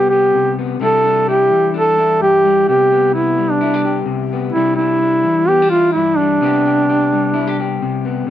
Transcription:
0.00 0.32 C3 medium
0.00 0.80 G3 medium
0.00 0.11 B3 medium
0.00 0.82 G4 medium
0.09 0.58 B3 medium
0.09 0.53 G4 medium
0.35 0.78 C3 medium
0.59 0.81 B3 medium
0.80 1.50 C3 medium
0.80 2.45 G3 medium
0.80 1.05 D4 medium
0.80 1.27 E4 medium
0.80 1.24 A4 loud
1.06 1.73 D4 medium
1.29 1.97 E4 medium
1.29 1.71 G4 medium
1.50 2.64 E3 medium
1.74 2.69 D4 medium
1.74 2.18 A4 loud
1.98 2.67 E4 medium
2.20 2.64 G2 medium
2.20 2.64 G4 loud
2.45 3.37 G3 medium
2.68 4.05 C3 medium
2.68 2.91 B3 medium
2.68 3.11 G4 loud
2.92 3.14 B3 medium
3.14 4.31 B3 medium
3.14 3.53 E4 medium
3.38 4.55 G3 medium
3.51 3.97 D4 medium
3.61 3.74 E4 medium
3.74 3.84 G4 medium
3.85 5.73 G4 medium
4.06 4.50 C3 medium
4.33 4.55 B3 medium
4.52 5.25 C3 medium
4.52 6.19 G3 medium
4.52 4.75 E4 loud
4.56 4.78 D4 medium
4.76 5.02 D4 medium
4.76 5.50 E4 loud
5.02 5.48 D4 medium
5.23 6.38 E3 medium
5.48 5.62 B3 medium
5.48 5.70 G4 loud
5.62 6.42 D4 soft
5.70 6.42 E4 medium
5.70 5.91 F4 loud
5.92 6.39 G2 medium
5.92 6.19 E4 medium
6.17 7.11 G3 medium
6.17 7.81 D4 medium
6.41 7.81 C3 medium
6.41 8.04 B3 medium
6.41 6.64 G4 medium
6.65 6.88 G4 medium
6.89 7.33 G4 medium
7.13 8.27 G3 medium
7.34 7.47 E4 medium
7.47 7.58 G4 soft
7.60 8.26 G4 medium
7.82 8.26 C3 medium
8.05 8.28 B3 medium
8.27 8.30 C3 medium

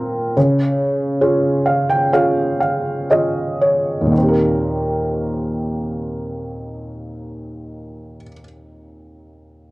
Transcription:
0.00 0.33 A#2 medium
0.00 0.38 C4 soft
0.00 0.39 F4 soft
0.00 0.39 A#4 soft
0.37 4.11 C#3 medium
1.21 2.09 C#4 soft
1.21 2.10 F4 soft
1.21 2.09 G#4 soft
1.66 1.87 F5 medium
1.89 2.11 G5 medium
2.12 3.07 C#4 soft
2.12 3.07 F4 soft
2.12 3.07 G#4 soft
2.12 2.57 F5 medium
2.60 3.06 F5 medium
3.10 4.12 C#4 soft
3.10 4.12 F4 soft
3.10 4.12 G#4 soft
3.10 3.58 D#5 soft
3.61 4.11 C#5 soft
4.01 8.16 D#2 soft
4.06 8.22 A#2 soft
4.12 8.27 D#3 soft
4.17 8.32 C4 soft
4.23 8.38 G4 soft
4.28 8.44 A#4 soft

